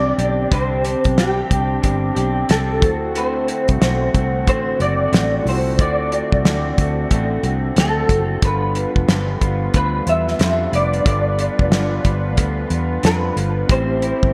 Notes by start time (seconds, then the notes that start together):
Already playing: C2 C3 D3 G3 C4 D4 G4 C5 D5
0.18 B1 C4 D4 G4, closed hi-hat
0.49 C2 C3 G3 C4 D4 G4 C5, kick, closed hi-hat
0.55 C5
0.84 C4 D4 G4, closed hi-hat
1.04 B1, kick, closed hi-hat
1.18 G3 C4 D4 G4, snare, closed hi-hat
1.49 C2 C4 D4 G4, kick, closed hi-hat
1.82 G1 G3 C4 D4 G4 D5, kick, closed hi-hat
2.15 B1 C4 D4 G4, closed hi-hat
2.49 C2 C3 G3 C4 D4 G4 A4, snare, closed hi-hat
2.80 D2 D3 A3 C4 E4 F#4 A4, kick, closed hi-hat
2.84 A3 C5
3.15 D3 A3 C4 F#4 C5, closed hi-hat
3.47 A3 C4 F#4, closed hi-hat
3.68 C2, kick, closed hi-hat
3.80 B1 D3 A3 C4 F#4, snare, closed hi-hat
4.13 C2 A3 C4 F#4, kick, closed hi-hat
4.46 A1 D3 A3 C4 F#4 C5, kick, closed hi-hat
4.79 F#1 A3 C4 F#4 D5, closed hi-hat
5.12 A1 D3 A3 C4 F#4, snare, closed hi-hat
5.44 C2 C4 D4 E4 F4 F#4 A4, open hi-hat
5.49 A3 F#4 C5
5.79 D2 D3 A3 C4 F#4 D5, kick, closed hi-hat
6.11 A3 C4 F#4, closed hi-hat
6.32 C2, kick
6.45 D2 D3 A3 C4 F#4, snare, closed hi-hat
6.77 D2 A3 C4 F#4, kick, closed hi-hat
7.10 A1 D3 A3 C4 F#4, kick, closed hi-hat
7.43 C2 A3 C4 F#4, closed hi-hat
7.76 D2 D3 A3 C4 F#4 A4, snare, closed hi-hat
8.08 F#1 A3 C4 E4 F#4 A4 C5, kick, closed hi-hat
8.41 G1 G2 D3 F3 G3 B3 D4 F4 A4 B4, kick, closed hi-hat
8.45 A#4 B4
8.52 B4
8.75 F3 B3 F4, closed hi-hat
8.96 F1, kick
9.08 G1 G2 D3 F3 B3 F4, snare, closed hi-hat
9.41 G1 F3 B3 F4, kick, closed hi-hat
9.74 D2 D3 F3 B3 F4 B4, kick, closed hi-hat
10.07 E2 B3 F4 E5, closed hi-hat
10.28 snare
10.39 F2 G2 D3 F3 B3 F4, snare, closed hi-hat
10.72 F1 F3 B3 F4 D5, closed hi-hat
10.93 closed hi-hat
11.03 G1 G2 D3 F3 B3 D4 F4 A4, kick, closed hi-hat
11.08 D5
11.38 F3 B3 F4, closed hi-hat
11.59 F1, kick
11.71 G1 G2 D3 F3 B3 F4, snare, closed hi-hat
12.04 G1 F3 B3 F4, kick, closed hi-hat
12.36 D2 D3 F3 B3 F4, kick, closed hi-hat
12.69 E2 B3 F4, closed hi-hat
13.02 F2 G2 D3 F3 B3 D4 F4 A4 B4 D5, snare, closed hi-hat
13.35 G1 F3 B3 F4, closed hi-hat
13.67 A1 A2 E3 G3 A3 C4 E4 G4, kick, closed hi-hat
13.71 E4 C5
14.01 G3 C4 E4, closed hi-hat
14.23 G1, kick